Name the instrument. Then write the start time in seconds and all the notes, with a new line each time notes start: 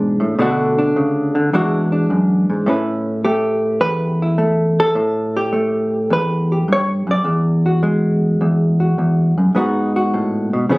hollow-body jazz guitar
Already playing: G#2 B2 E3 G#3 D4 G#4
0.20 A2
0.39 B2 D3 A3 D4 F#4
0.79 D4
0.96 C#3
1.35 D3
1.53 E2 E3 G#3 D4 F#4
1.92 D4
2.10 F#2
2.50 G#2
2.66 A2 A3 C#4 E4 B4
3.25 A3 G4
3.81 E2 B4
4.22 E4
4.38 A3
4.80 A4
4.95 A2
5.37 G4
5.53 A3
6.10 E2 B4
6.52 G4
6.68 G2
6.73 C#5
7.07 F#2
7.11 D5
7.24 E2
7.66 F#4
7.83 G#3
8.41 E2
8.80 F#4
8.98 E2
9.38 F#2
9.55 G#2 B3 D#4 F#4
9.96 F#4
10.14 A2
10.53 B2
10.69 C#3 F3 B3 C#4 G#4